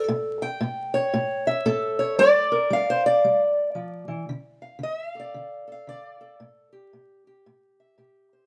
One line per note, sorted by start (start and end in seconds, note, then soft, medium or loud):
0.00 0.45 A4 soft
0.08 0.56 A2 medium
0.42 1.46 G5 medium
0.61 1.08 A2 medium
0.94 1.98 C#5 medium
1.14 1.61 A2 medium
1.47 2.16 E5 medium
1.66 2.14 A2 medium
1.66 2.22 A4 medium
1.99 2.15 C#5 medium
2.19 2.67 G3 medium
2.19 2.88 D5 loud
2.52 4.27 A#4 soft
2.70 3.19 G3 medium
2.70 3.42 F5 medium
2.90 3.06 C5 medium
3.06 4.29 D5 medium
3.24 3.72 G3 medium
3.75 4.07 F3 medium
4.08 4.28 E3 medium
4.29 4.78 D3 medium
4.62 4.81 F5 soft
4.79 5.29 D3 medium
4.83 5.10 E5 loud
5.10 5.70 F5 loud
5.15 5.67 A4 soft
5.20 5.88 D5 medium
5.34 5.83 D3 medium
5.68 6.20 A4 soft
5.72 6.41 F5 medium
5.87 6.36 D3 medium
5.87 6.41 D5 loud
6.21 6.72 A4 soft
6.40 6.89 A2 medium
6.72 7.25 G4 soft
6.93 7.42 A2 medium
7.27 7.97 G4 soft
7.46 7.95 A2 medium
7.80 8.46 E5 soft
7.98 8.46 A2 medium
7.98 8.46 G4 soft
8.33 8.46 C5 soft